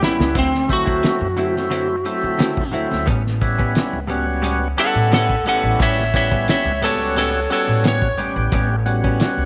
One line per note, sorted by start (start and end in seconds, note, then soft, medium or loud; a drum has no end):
0.00 0.15 A1 medium
0.00 0.19 A2 medium
0.00 0.19 G3 medium
0.00 0.36 G3 medium
0.00 0.19 B3 medium
0.00 0.36 B3 medium
0.00 0.36 C#4 medium
0.00 0.18 C#4 medium
0.00 0.36 E4 medium
0.00 snare medium
0.04 0.36 E4 medium
0.20 0.32 C#2 medium
0.20 snare medium
0.35 1.02 D2 medium
0.35 0.53 D3 medium
0.35 0.53 F#3 medium
0.35 0.52 C4 medium
0.35 0.70 C4 medium
0.35 0.52 E4 medium
0.35 kick medium
0.35 closed hi-hat medium
0.53 muted clean electric guitar stroke soft
0.53 snare soft
0.68 1.28 F#3 medium
0.68 1.28 A3 medium
0.68 1.28 C4 medium
0.68 1.28 E4 medium
0.68 muted clean electric guitar stroke soft
0.68 kick medium
0.68 closed hi-hat medium
0.73 2.71 F#4 medium
0.86 1.02 F#3 soft
0.86 1.02 C4 soft
0.86 1.03 E4 medium
0.86 kick medium
1.03 muted clean electric guitar stroke soft
1.03 snare medium
1.03 closed hi-hat medium
1.21 2.00 F#2 medium
1.37 1.55 D3 medium
1.37 1.55 F#3 medium
1.37 1.96 F#3 medium
1.37 1.96 A3 medium
1.37 1.96 C4 medium
1.37 1.54 C4 medium
1.37 1.96 E4 medium
1.37 1.54 E4 medium
1.37 closed hi-hat medium
1.55 muted clean electric guitar stroke soft
1.55 snare soft
1.70 1.89 D3 medium
1.70 1.89 F#3 medium
1.70 1.88 C4 medium
1.70 1.87 E4 medium
1.70 closed hi-hat medium
2.05 2.64 F#3 medium
2.05 2.64 A3 medium
2.05 2.64 C4 medium
2.05 2.64 E4 loud
2.05 muted clean electric guitar stroke soft
2.05 closed hi-hat medium
2.23 2.73 D3 medium
2.39 2.57 D3 medium
2.39 2.56 F#3 medium
2.39 2.55 C4 medium
2.39 2.55 E4 medium
2.39 snare loud
2.39 closed hi-hat medium
2.56 muted clean electric guitar stroke soft
2.56 kick medium
2.71 2.87 D2 medium
2.71 2.90 D3 medium
2.71 2.90 F#3 medium
2.71 3.07 F#3 medium
2.71 3.08 A3 medium
2.71 3.08 C4 medium
2.71 2.89 C4 medium
2.71 3.08 E4 medium
2.71 2.89 E4 medium
2.71 closed hi-hat medium
2.90 3.04 D2 medium
2.90 muted clean electric guitar stroke soft
2.90 snare soft
3.06 3.74 A1 medium
3.06 3.25 A2 medium
3.06 3.24 G3 medium
3.06 3.24 B3 medium
3.06 3.23 C#4 medium
3.06 kick loud
3.06 closed hi-hat medium
3.24 muted clean electric guitar stroke soft
3.24 snare soft
3.40 4.00 G3 medium
3.40 4.00 B3 medium
3.40 4.00 C#4 medium
3.40 4.00 E4 loud
3.40 muted clean electric guitar stroke soft
3.40 kick medium
3.40 closed hi-hat medium
3.58 3.74 G3 medium
3.58 3.74 B3 medium
3.58 3.74 C#4 medium
3.58 kick medium
3.75 snare medium
3.75 closed hi-hat medium
3.93 4.72 C#2 medium
4.07 4.26 A2 medium
4.07 4.26 G3 medium
4.07 4.68 G3 medium
4.07 4.26 B3 medium
4.07 4.68 B3 medium
4.07 4.68 C#4 medium
4.07 4.25 C#4 medium
4.07 4.68 F#4 medium
4.07 closed hi-hat medium
4.26 muted clean electric guitar stroke soft
4.42 4.61 A2 medium
4.42 4.60 G3 medium
4.42 4.60 B3 medium
4.42 4.59 C#4 medium
4.42 closed hi-hat medium
4.60 muted clean electric guitar stroke soft
4.77 5.36 G3 medium
4.77 5.36 B3 medium
4.77 5.36 C#4 medium
4.77 5.36 E4 medium
4.77 5.13 A4 medium
4.77 5.12 F#5 medium
4.77 muted clean electric guitar stroke soft
4.77 closed hi-hat medium
4.95 5.46 A2 medium
5.11 5.29 A2 medium
5.11 5.29 G3 medium
5.11 5.28 B3 medium
5.11 5.28 C#4 medium
5.11 5.45 A4 medium
5.11 5.46 F#5 medium
5.11 snare loud
5.11 closed hi-hat medium
5.29 muted clean electric guitar stroke soft
5.29 kick medium
5.45 5.60 A1 medium
5.45 5.63 A2 medium
5.45 5.63 G3 medium
5.45 6.04 G3 medium
5.45 6.04 B3 medium
5.45 5.63 B3 medium
5.45 6.04 C#4 medium
5.45 5.62 C#4 medium
5.45 6.04 E4 medium
5.45 5.79 A4 medium
5.45 closed hi-hat medium
5.49 5.80 F#5 medium
5.63 5.76 A1 medium
5.63 muted clean electric guitar stroke soft
5.79 6.46 A1 medium
5.79 5.97 A2 medium
5.79 5.98 G3 medium
5.79 5.97 B3 medium
5.79 5.96 C#4 medium
5.79 6.13 C#5 medium
5.79 6.14 E5 medium
5.79 kick loud
5.79 closed hi-hat medium
5.97 muted clean electric guitar stroke soft
5.97 snare soft
6.14 6.72 G3 medium
6.14 6.72 B3 medium
6.14 6.72 C#4 medium
6.14 6.72 E4 medium
6.14 6.47 C#5 medium
6.14 6.48 E5 medium
6.14 muted clean electric guitar stroke soft
6.14 kick medium
6.14 closed hi-hat medium
6.31 6.47 G3 soft
6.31 6.47 B3 soft
6.31 6.48 C#4 medium
6.31 kick medium
6.47 6.81 C#5 medium
6.47 6.82 E5 medium
6.47 muted clean electric guitar stroke soft
6.47 snare medium
6.47 closed hi-hat medium
6.65 7.44 C#2 medium
6.81 7.00 A2 medium
6.81 6.99 G3 medium
6.81 7.41 G3 medium
6.81 7.41 B3 medium
6.81 6.99 B3 medium
6.81 7.41 C#4 medium
6.81 6.98 C#4 medium
6.81 7.41 F#4 medium
6.81 7.15 A4 medium
6.81 7.17 C#5 medium
6.81 closed hi-hat medium
7.00 muted clean electric guitar stroke soft
7.16 7.34 A2 medium
7.16 7.34 G3 medium
7.16 7.34 B3 medium
7.16 7.33 C#4 medium
7.16 7.49 A4 medium
7.16 7.50 C#5 medium
7.16 closed hi-hat medium
7.34 muted clean electric guitar stroke soft
7.50 8.08 G3 medium
7.50 8.08 B3 medium
7.50 8.08 C#4 medium
7.50 8.08 F#4 medium
7.50 7.83 A4 medium
7.50 7.84 C#5 medium
7.50 muted clean electric guitar stroke soft
7.50 closed hi-hat medium
7.68 8.18 A2 medium
7.83 8.02 A2 soft
7.83 8.02 G3 medium
7.83 8.02 B3 medium
7.83 8.01 C#4 medium
7.83 snare loud
7.83 closed hi-hat medium
7.88 8.19 C#5 medium
8.02 kick medium
8.17 8.32 A1 medium
8.17 8.36 A2 medium
8.17 8.76 G3 medium
8.17 8.36 G3 medium
8.17 8.76 B3 medium
8.17 8.36 B3 medium
8.17 8.76 C#4 medium
8.17 8.35 C#4 medium
8.17 8.76 G4 medium
8.17 closed hi-hat medium
8.36 8.49 A1 medium
8.36 muted clean electric guitar stroke soft
8.52 9.19 A1 medium
8.52 8.70 A2 medium
8.52 8.71 G3 medium
8.52 8.70 B3 medium
8.52 8.69 C#4 medium
8.52 kick loud
8.52 closed hi-hat medium
8.71 muted clean electric guitar stroke soft
8.86 9.44 G3 medium
8.86 9.44 B3 medium
8.86 9.44 C#4 medium
8.86 9.44 F#4 loud
8.86 muted clean electric guitar stroke soft
8.86 closed hi-hat medium
9.04 9.20 G3 soft
9.04 9.21 B3 medium
9.04 9.20 C#4 medium
9.04 kick medium
9.20 muted clean electric guitar stroke soft
9.20 snare loud
9.20 closed hi-hat medium
9.37 9.45 C#2 medium